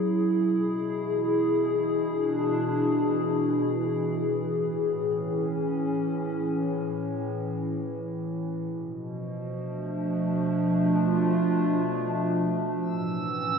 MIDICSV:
0, 0, Header, 1, 3, 480
1, 0, Start_track
1, 0, Tempo, 500000
1, 13044, End_track
2, 0, Start_track
2, 0, Title_t, "Synth texture"
2, 0, Program_c, 0, 99
2, 12306, Note_on_c, 0, 88, 79
2, 13044, Note_off_c, 0, 88, 0
2, 13044, End_track
3, 0, Start_track
3, 0, Title_t, "Ambient pad"
3, 0, Program_c, 1, 92
3, 0, Note_on_c, 1, 45, 71
3, 0, Note_on_c, 1, 54, 93
3, 0, Note_on_c, 1, 61, 86
3, 0, Note_on_c, 1, 64, 80
3, 0, Note_on_c, 1, 68, 77
3, 378, Note_off_c, 1, 54, 0
3, 380, Note_off_c, 1, 61, 0
3, 389, Note_off_c, 1, 45, 0
3, 396, Note_on_c, 1, 47, 78
3, 811, Note_on_c, 1, 52, 66
3, 1822, Note_on_c, 1, 62, 79
3, 4348, Note_off_c, 1, 62, 0
3, 4351, Note_on_c, 1, 45, 77
3, 4359, Note_off_c, 1, 47, 0
3, 4731, Note_on_c, 1, 61, 72
3, 8318, Note_off_c, 1, 64, 0
3, 8322, Note_off_c, 1, 45, 0
3, 8323, Note_off_c, 1, 68, 0
3, 8327, Note_off_c, 1, 52, 0
3, 8328, Note_off_c, 1, 61, 0
3, 8328, Note_on_c, 1, 47, 81
3, 8454, Note_on_c, 1, 53, 93
3, 9039, Note_on_c, 1, 57, 90
3, 9140, Note_on_c, 1, 62, 73
3, 10113, Note_on_c, 1, 65, 82
3, 12291, Note_off_c, 1, 53, 0
3, 12296, Note_off_c, 1, 57, 0
3, 12296, Note_off_c, 1, 65, 0
3, 12297, Note_off_c, 1, 47, 0
3, 12299, Note_off_c, 1, 62, 0
3, 12302, Note_on_c, 1, 45, 91
3, 12380, Note_on_c, 1, 52, 86
3, 12623, Note_on_c, 1, 61, 81
3, 13044, Note_off_c, 1, 45, 0
3, 13044, Note_off_c, 1, 52, 0
3, 13044, Note_off_c, 1, 61, 0
3, 13044, End_track
0, 0, End_of_file